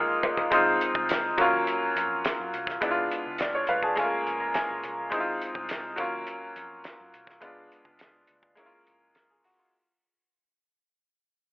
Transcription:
Already playing: grand piano G#3 A#3 D#4 F4
0.23 floor tom
0.37 floor tom
0.50 fingered electric bass C#2, grand piano G#3 C4 D#4 F4, kick, closed hi-hat
0.81 closed hi-hat
0.95 fingered electric bass C2, kick
1.09 snare, closed hi-hat
1.37 fingered electric bass D#2, grand piano F#3 A#3 C#4 F4, kick, closed hi-hat
1.67 closed hi-hat
1.82 muted fingered electric bass stroke
1.96 fingered electric bass F2, closed hi-hat
2.25 snare, closed hi-hat
2.40 fingered electric bass F#2
2.54 fingered electric bass C2, closed hi-hat
2.67 kick, snare
2.81 fingered electric bass C#2, grand piano G#3 B3 D4 E4, kick, closed hi-hat
2.91 grand piano F4
3.11 closed hi-hat
3.26 fingered electric bass C#2
3.38 grand piano D5, snare, closed hi-hat
3.55 grand piano C#5
3.67 fingered electric bass D2, grand piano B4 F5, closed hi-hat
3.83 grand piano G#4 A5, kick
3.95 fingered electric bass F#1, grand piano G#3 A3 C#4 F4 G#5, kick, closed hi-hat
4.03 grand piano A#3
4.27 fingered electric bass F1, closed hi-hat
4.40 grand piano A#5
4.54 grand piano G#5, snare, closed hi-hat
4.70 fingered electric bass F#1
4.83 fingered electric bass C2, closed hi-hat
5.10 fingered electric bass C#2, grand piano G#3 C4 D#4 E4, kick, closed hi-hat
5.20 grand piano F4
5.42 closed hi-hat
5.55 fingered electric bass C2, kick
5.69 snare, closed hi-hat
5.96 fingered electric bass D#2, grand piano F#3 A#3 C#4, kick, closed hi-hat
6.00 grand piano F4
6.27 closed hi-hat
6.43 muted fingered electric bass stroke
6.56 fingered electric bass F2, closed hi-hat
6.84 snare, closed hi-hat
7.00 fingered electric bass F#2
7.14 fingered electric bass C2, closed hi-hat
7.27 kick, snare
7.40 fingered electric bass C#2, grand piano G#3 B3 D4 F4, kick, closed hi-hat
7.72 closed hi-hat
7.85 fingered electric bass C#2, kick
7.99 snare, closed hi-hat
8.27 fingered electric bass D2, closed hi-hat
8.43 kick
8.55 fingered electric bass F#1, grand piano G#3 A#3 C#4, kick, closed hi-hat
8.60 grand piano E4
8.66 grand piano F4
8.87 fingered electric bass F1, closed hi-hat
9.15 fingered electric bass F#1, grand piano A#4, snare, closed hi-hat
9.30 grand piano G#4
9.44 grand piano F#4, open hi-hat
9.59 grand piano F4

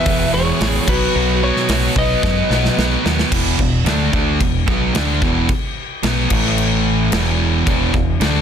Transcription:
Already playing: lead electric guitar B4 E5
0.06 fingered electric bass E1, distorted electric guitar E2 B2 E3, kick, open hi-hat
0.33 fingered electric bass E1, distorted electric guitar E2 B2 E3, lead electric guitar G#4 C#5
0.61 fingered electric bass A1, distorted electric guitar E2 B2 E3, snare, open hi-hat
0.88 fingered electric bass B1, distorted electric guitar B2 F#3 B3, lead electric guitar F#4 B4, kick, crash
1.15 fingered electric bass B1, distorted electric guitar B2 F#3 B3
1.42 distorted electric guitar B2 F#3 B3, lead electric guitar F#4 C#5
1.56 snare
1.69 fingered electric bass B1, distorted electric guitar B2 F#3 B3, snare, open hi-hat
1.96 fingered electric bass B1, distorted electric guitar B2 F#3 B3, lead electric guitar B4 D#5, kick
2.23 fingered electric bass F#2, distorted electric guitar B2 F#3 B3, kick, snare
2.50 fingered electric bass B1, distorted electric guitar B2 F#3 B3, snare
2.65 snare
2.78 fingered electric bass B1, distorted electric guitar B2 F#3 B3, snare
3.05 fingered electric bass D#2, distorted electric guitar B2 F#3 B3, snare
3.19 snare
3.31 fingered electric bass E1, distorted electric guitar E2 B2 E3, kick, crash
3.59 fingered electric bass E1, distorted electric guitar E2 B2, kick
3.86 fingered electric bass D2, distorted electric guitar D3 A3 D4, snare, crash
4.13 fingered electric bass D2, distorted electric guitar D3 A3 D4, kick
4.40 fingered electric bass E1, distorted electric guitar E2 B2, kick, crash
4.68 fingered electric bass B1, distorted electric guitar B2 F#3 B3, kick
4.95 fingered electric bass D2, distorted electric guitar D3 A3 D4, snare, crash
5.22 fingered electric bass E1, distorted electric guitar E2 B2 E3, kick
5.49 kick, crash
6.03 fingered electric bass B1, distorted electric guitar B2 F#3 B3, snare, crash
6.30 fingered electric bass A1, distorted electric guitar A2 E3 A3, kick, crash
6.45 snare
6.58 crash
7.12 fingered electric bass E1, distorted electric guitar E2 B2 E3, snare, crash
7.67 fingered electric bass E1, distorted electric guitar E2 B2 E3, kick, crash
7.94 fingered electric bass E1, distorted electric guitar E2 B2, kick
8.21 fingered electric bass D2, distorted electric guitar D3 A3 D4, snare, crash

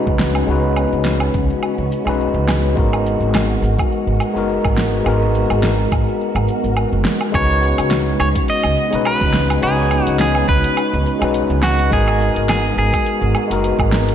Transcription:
Already playing: string machine C#3 B3 D#4 F#4, tine electric piano G#3 C#4 D#4 F#4 B4
0.07 upright bass C#2, kick
0.19 snare, shaker
0.35 low woodblock, shaker
0.47 upright bass C#2, tine electric piano G#3 C#4 D#4 F#4, string machine C#4, shaker
0.51 tine electric piano B4
0.76 low woodblock, shaker
0.93 upright bass C#2, shaker
1.05 snare, shaker
1.20 low woodblock
1.34 upright bass C#2, kick, shaker
1.50 shaker
1.63 low woodblock, shaker
1.78 upright bass C#2
1.92 shaker
2.04 upright bass B1, tine electric piano G#3 C#4 D#4 F#4, low woodblock, shaker
2.09 tine electric piano B4
2.21 shaker
2.34 upright bass C#2
2.49 snare, low woodblock, shaker
2.65 shaker
2.75 upright bass G#1, tine electric piano G#3 B3 D#4 F#4, string machine G#3 B3 A#4, kick, shaker
2.79 tine electric piano A#4
2.93 low woodblock
3.06 shaker
3.20 upright bass G#1, shaker
3.35 snare, low woodblock, shaker
3.62 upright bass G#1, shaker
3.79 kick, low woodblock, shaker
3.92 shaker
4.07 upright bass G#1
4.20 low woodblock, shaker
4.33 upright bass F#1, tine electric piano G#3 B3 D#4 F#4, shaker
4.38 tine electric piano A#4
4.49 shaker
4.65 upright bass G#1, kick, low woodblock
4.77 snare, shaker
4.94 shaker
5.04 upright bass G#1, tine electric piano G#3 B3 D#4 F#4, low woodblock, shaker
5.08 tine electric piano A#4
5.35 shaker
5.50 upright bass G#1, low woodblock, shaker
5.63 snare, shaker
5.92 upright bass G#1, kick, low woodblock, shaker
6.08 shaker
6.21 shaker
6.35 upright bass G#1, low woodblock
6.48 shaker
6.64 upright bass G#1, shaker
6.77 low woodblock, shaker
6.93 upright bass F#1
7.05 snare, shaker
7.21 low woodblock, shaker
7.32 upright bass C#2, string machine C#3 B3 D#4, tine electric piano G#3 C#4 D#4 F#4, clean electric guitar C#5, kick, closed hi-hat, low woodblock, shaker
7.37 tine electric piano B4
7.63 shaker
7.78 upright bass C#2, closed hi-hat, low woodblock, shaker
7.91 snare, closed hi-hat, shaker
8.20 upright bass C#2, clean electric guitar C#5, low woodblock, shaker
8.36 kick, closed hi-hat, shaker
8.48 clean electric guitar D#5, closed hi-hat, shaker
8.63 upright bass C#2, low woodblock
8.77 shaker
8.90 upright bass B1, tine electric piano G#3 C#4 D#4 F#4, closed hi-hat, shaker
8.95 tine electric piano B4
9.05 clean electric guitar B4, closed hi-hat, low woodblock, shaker
9.21 upright bass C#2, kick
9.34 snare, shaker
9.50 closed hi-hat, low woodblock, shaker
9.61 upright bass C#2, tine electric piano G#3 C#4 D#4 F#4, clean electric guitar G#4, closed hi-hat, shaker
9.65 tine electric piano B4
9.91 low woodblock, shaker
10.04 upright bass C#2, clean electric guitar F#4, closed hi-hat, shaker
10.19 clean electric guitar G#4, snare, closed hi-hat, shaker
10.35 low woodblock
10.48 upright bass C#2, clean electric guitar B4, kick, shaker
10.64 closed hi-hat, shaker
10.77 closed hi-hat, low woodblock, shaker
10.93 upright bass C#2
11.06 shaker
11.19 upright bass B1, tine electric piano G#3 C#4 D#4 F#4, closed hi-hat, low woodblock, shaker
11.24 tine electric piano B4
11.34 closed hi-hat, shaker
11.50 upright bass C#2
11.63 clean electric guitar F#4, snare, low woodblock, shaker
11.79 closed hi-hat, shaker
11.90 upright bass G#1, tine electric piano G#3 B3 D#4 F#4, string machine G#3 B3 F#4 A#4, clean electric guitar G#4, kick, closed hi-hat, shaker
11.94 tine electric piano A#4
12.08 low woodblock
12.21 shaker
12.36 upright bass G#1, closed hi-hat, shaker
12.49 clean electric guitar G#4, snare, closed hi-hat, low woodblock, shaker
12.77 upright bass G#1, clean electric guitar G#4, shaker
12.93 kick, closed hi-hat, low woodblock, shaker
13.06 closed hi-hat, shaker
13.22 upright bass G#1
13.35 low woodblock, shaker
13.48 upright bass F#1, tine electric piano G#3 B3 D#4 F#4, closed hi-hat, shaker
13.53 tine electric piano A#4
13.64 closed hi-hat, shaker
13.79 upright bass G#1, kick, low woodblock
13.92 snare, shaker
14.08 closed hi-hat, shaker

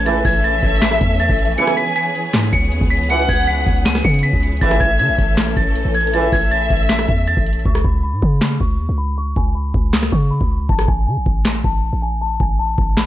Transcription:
Already playing: 808-style bass A1, string section E3 A3 C#4 A4
0.06 brass ensemble C#2 A2 E3, violin section E5, celesta A6, closed hi-hat
0.25 808-style bass A1, celesta G#6, kick, open hi-hat
0.44 celesta A6, closed hi-hat
0.63 808-style bass A1, kick, closed hi-hat
0.69 closed hi-hat
0.76 closed hi-hat
0.82 celesta B6, snare, clap, closed hi-hat
0.91 cross-stick
1.01 808-style bass E2, kick, closed hi-hat
1.10 closed hi-hat
1.20 celesta A6, closed hi-hat
1.29 808-style bass A1, kick
1.39 closed hi-hat
1.45 closed hi-hat
1.51 closed hi-hat
1.58 brass ensemble C#2 B2 E3, string section B3 G#4, violin section G#5, celesta C#7, closed hi-hat
1.67 cross-stick
1.77 celesta B6, closed hi-hat
1.96 celesta B6, closed hi-hat
2.15 closed hi-hat
2.34 808-style bass G#2, snare, clap, closed hi-hat
2.40 closed hi-hat
2.46 closed hi-hat
2.53 808-style bass C#2, celesta C#7, kick, closed hi-hat
2.72 808-style bass D#2, closed hi-hat
2.81 808-style bass C#2, kick
2.90 celesta B6, closed hi-hat
2.97 closed hi-hat
3.03 closed hi-hat
3.10 brass ensemble C#2 B2 E3, violin section F#5, celesta C#7, closed hi-hat
3.29 808-style bass C#2, celesta G#6, kick, open hi-hat
3.47 celesta B6, closed hi-hat
3.67 808-style bass C#2, kick, closed hi-hat
3.76 closed hi-hat
3.86 celesta D#7, snare, clap, closed hi-hat
3.95 cross-stick, snare
4.04 808-style bass C#3, celesta C#7, kick, closed hi-hat
4.09 closed hi-hat
4.14 closed hi-hat
4.19 closed hi-hat
4.23 celesta B6, closed hi-hat
4.33 808-style bass C#2, kick
4.43 closed hi-hat
4.47 closed hi-hat
4.52 closed hi-hat
4.57 closed hi-hat
4.61 808-style bass A1, brass ensemble C#2 A2 E3, string section E3 A3 C#4 A4, violin section E5, celesta A6, kick, closed hi-hat
4.71 cross-stick
4.80 808-style bass A1, celesta G#6, kick, closed hi-hat
4.99 808-style bass C#3, celesta G#6, closed hi-hat
5.09 808-style bass A1
5.19 808-style bass A1, kick, closed hi-hat
5.37 snare, clap, closed hi-hat
5.44 closed hi-hat
5.50 closed hi-hat
5.57 808-style bass A1, celesta A6, kick, closed hi-hat
5.75 closed hi-hat
5.85 808-style bass A1
5.95 celesta G#6, closed hi-hat
6.01 closed hi-hat
6.07 closed hi-hat
6.13 brass ensemble C#2 A2 E3, violin section E5, celesta A6, closed hi-hat
6.32 808-style bass A1, celesta G#6, kick, open hi-hat
6.51 celesta A6, closed hi-hat
6.70 808-style bass A1, kick, closed hi-hat
6.77 closed hi-hat
6.83 closed hi-hat
6.89 celesta B6, snare, clap, closed hi-hat
6.99 cross-stick
7.08 808-style bass E2, kick, closed hi-hat
7.18 closed hi-hat
7.27 celesta A6, closed hi-hat
7.37 808-style bass A1, kick
7.46 closed hi-hat
7.53 closed hi-hat
7.59 closed hi-hat
7.65 808-style bass C#2, celesta C#6, kick
7.75 cross-stick
7.84 808-style bass C#2, celesta B5, kick
8.03 celesta B5
8.13 808-style bass G#2
8.22 808-style bass C#3, kick
8.41 snare, clap
8.60 808-style bass C#2, celesta C#6, kick
8.79 808-style bass D#2
8.89 808-style bass C#2
8.98 celesta B5
9.18 celesta C#6
9.36 808-style bass C#2, celesta G#5, kick
9.55 celesta B5
9.74 808-style bass C#2, kick
9.93 celesta D#6, snare, clap
10.03 cross-stick, snare
10.12 808-style bass C#3, celesta C#6, kick
10.31 celesta B5
10.41 808-style bass C#2, kick
10.69 808-style bass A1, celesta A5, kick
10.79 cross-stick
10.88 808-style bass A1, celesta G#5, kick
11.07 808-style bass C#3, celesta G#5
11.17 808-style bass A1
11.26 808-style bass A1, kick
11.45 snare, clap
11.64 808-style bass A1, celesta A5, kick
11.93 808-style bass A1
12.02 celesta G#5
12.21 celesta A5
12.40 808-style bass A1, celesta G#5, kick
12.59 celesta A5
12.78 808-style bass A1, kick
12.97 celesta B5, snare, clap

